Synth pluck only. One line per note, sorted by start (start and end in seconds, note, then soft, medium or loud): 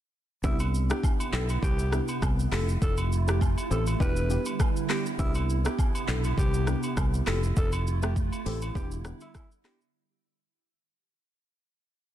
0.44 0.86 B3 medium
0.44 0.86 D4 medium
0.44 0.86 E4 medium
0.44 0.86 G4 loud
0.90 1.09 B3 medium
0.90 1.09 D4 medium
0.90 1.09 E4 medium
0.90 1.10 G4 medium
1.33 1.54 B3 medium
1.33 1.54 D4 medium
1.33 1.54 E4 medium
1.33 1.55 G4 medium
1.92 2.14 B3 medium
1.92 2.14 D4 medium
1.92 2.14 E4 medium
1.92 2.14 G4 medium
2.52 2.73 A3 medium
2.52 2.73 C4 medium
2.52 2.73 E4 medium
2.52 2.73 G4 medium
3.27 3.47 A3 medium
3.27 3.47 C4 medium
3.27 3.47 E4 medium
3.27 3.47 G4 medium
3.70 3.92 A3 medium
3.70 3.92 C4 medium
3.70 3.92 E4 medium
3.70 3.92 G4 medium
4.00 4.28 B3 loud
4.00 4.28 D4 medium
4.00 4.28 E4 medium
4.00 4.28 G4 loud
4.30 4.51 B3 medium
4.30 4.51 D4 medium
4.30 4.51 E4 medium
4.30 4.52 G4 medium
4.89 5.11 B3 medium
4.89 5.11 D4 medium
4.89 5.11 E4 medium
4.89 5.11 G4 medium
5.19 5.61 B3 medium
5.19 5.61 D4 medium
5.19 5.61 E4 medium
5.19 5.61 G4 loud
5.65 5.84 B3 medium
5.65 5.84 D4 medium
5.65 5.85 E4 medium
5.65 5.85 G4 medium
6.08 6.29 B3 medium
6.08 6.29 D4 medium
6.08 6.30 E4 medium
6.08 6.30 G4 medium
6.67 6.89 B3 medium
6.67 6.89 D4 medium
6.67 6.89 E4 medium
6.67 6.89 G4 medium
7.26 7.48 A3 medium
7.26 7.48 C4 medium
7.26 7.48 E4 medium
7.26 7.48 G4 medium
8.02 8.22 A3 medium
8.02 8.22 C4 medium
8.02 8.22 E4 medium
8.02 8.22 G4 medium
8.46 8.67 A3 medium
8.46 8.67 C4 medium
8.46 8.67 E4 medium
8.46 8.67 G4 medium
8.75 9.03 B3 loud
8.75 9.03 D4 medium
8.75 9.03 E4 medium
8.75 9.03 G4 loud
9.05 9.26 B3 medium
9.05 9.27 D4 medium
9.05 9.27 E4 medium
9.05 9.27 G4 medium
9.64 9.86 B3 medium
9.64 9.86 D4 medium
9.64 9.86 E4 medium
9.64 9.86 G4 medium